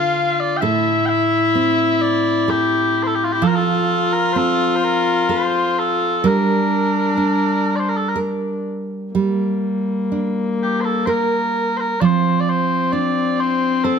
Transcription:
Already playing: nylon-string guitar D3 D4 A4, viola F4, bagpipes F5
0.40 bagpipes D5
0.57 bagpipes G5
0.61 nylon-string guitar A2 A4, viola E4, bagpipes E5
1.06 bagpipes E5 G5
1.55 nylon-string guitar C4
2.01 bagpipes D5
2.48 bagpipes G4, nylon-string guitar A4
3.03 bagpipes A4 C5
3.15 bagpipes G4
3.24 bagpipes F4
3.32 viola E4, bagpipes G4
3.42 nylon-string guitar F3, viola F4, bagpipes A4
3.47 bagpipes A#4
3.56 bagpipes A4
4.13 bagpipes A#4
4.33 nylon-string guitar C4, bagpipes C5
4.37 bagpipes A4
4.76 bagpipes C5
4.84 bagpipes A#4
5.29 nylon-string guitar A4, bagpipes C5
5.79 bagpipes A4
6.24 nylon-string guitar G3 A#4, viola D4, bagpipes A#4
7.17 nylon-string guitar D4
7.76 bagpipes C5 D5
7.89 bagpipes A#4
7.97 bagpipes A4
8.09 bagpipes A#4
8.16 nylon-string guitar A#4
9.14 nylon-string guitar G3, viola A#3
10.12 nylon-string guitar D4
10.62 bagpipes G4
10.81 bagpipes C5
10.85 bagpipes A4
11.06 nylon-string guitar A#4, bagpipes A#4 C5
11.77 bagpipes A#4 C5
12.00 nylon-string guitar F3, viola C4, bagpipes D5
12.05 bagpipes C5
12.40 bagpipes D5
12.49 bagpipes C5
12.92 nylon-string guitar D4, bagpipes D5
13.40 bagpipes C5
13.84 bagpipes A4, nylon-string guitar C5

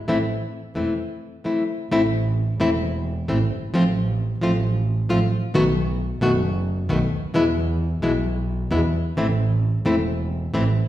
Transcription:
0.08 double bass A1, nylon-string guitar E3 A3 C4 E4
0.75 double bass E1, nylon-string guitar E3 A3 C4 E4
1.44 nylon-string guitar E3 A3 C4 E4
1.91 double bass A1, nylon-string guitar E3 A3 C4 E4
2.60 double bass E1, nylon-string guitar E3 A3 C4 E4
3.28 double bass A1, nylon-string guitar E3 A3 C4 E4
3.51 double bass G1
3.74 double bass A1, nylon-string guitar F3 A3 C4 F4
4.41 double bass A1, nylon-string guitar F3 A3 C4 F4
5.09 double bass A1, nylon-string guitar F3 A3 C4 F4
5.54 double bass B1, nylon-string guitar B2 D#3 A3 B3 F#4
6.21 double bass F#1, nylon-string guitar B2 D#3 A3 B3 F#4
6.89 double bass B1, nylon-string guitar B2 D#3 A3 B3 F#4
7.12 double bass D2
7.34 double bass E2, nylon-string guitar B2 E3 G#3 B3 E4
8.02 double bass B1, nylon-string guitar B2 E3 G#3 B3 E4
8.71 double bass E2, nylon-string guitar B2 E3 G#3 B3 E4
9.17 double bass A1, nylon-string guitar E3 A3 C4 E4
9.85 double bass E1, nylon-string guitar E3 A3 C4 E4
10.54 double bass A1, nylon-string guitar E3 A3 C4 E4

